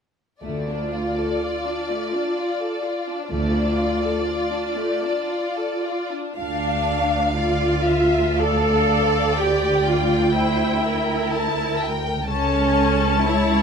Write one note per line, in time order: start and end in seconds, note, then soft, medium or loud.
0.41 1.26 D2 soft
0.41 1.24 D2 soft
0.41 0.66 A3 soft
0.41 3.27 F4 soft
0.41 3.26 D5 soft
0.69 0.94 D4 soft
0.92 1.17 F4 soft
1.16 1.42 A4 soft
1.41 1.66 F4 soft
1.67 1.90 D4 soft
1.90 2.14 A3 soft
2.14 2.37 D4 soft
2.39 2.62 F4 soft
2.61 2.85 A4 soft
2.84 3.08 F4 soft
3.10 3.32 D4 soft
3.31 4.10 D2 soft
3.31 4.08 D2 soft
3.31 3.53 A3 soft
3.31 6.13 F4 soft
3.31 6.13 D5 soft
3.53 3.78 D4 soft
3.78 4.02 F4 soft
4.03 4.27 A4 soft
4.28 4.52 F4 soft
4.50 4.76 D4 soft
4.77 5.02 A3 soft
5.04 5.29 D4 soft
5.28 5.56 F4 soft
5.57 5.85 A4 soft
5.84 6.12 F4 soft
6.11 6.38 D4 soft
6.37 12.26 D2 soft
6.37 7.34 D4 medium
6.37 7.34 F5 medium
6.37 8.33 F5 soft
7.38 8.37 F4 medium
7.38 7.87 D5 soft
7.85 8.36 E5 soft
8.36 9.37 A4 medium
8.36 10.35 D5 soft
8.36 9.34 F5 soft
9.35 9.86 G4 medium
9.35 11.32 G5 soft
9.87 10.36 F4 medium
10.35 11.78 E4 medium
10.35 10.84 C5 soft
10.83 12.29 A#4 soft
11.33 11.81 A5 soft
11.83 12.31 G5 soft
12.29 13.62 C#2 soft
12.29 13.23 C#4 medium
12.29 13.25 A4 medium
12.29 13.62 A5 soft
13.27 13.62 E4 medium
13.27 13.62 C#5 soft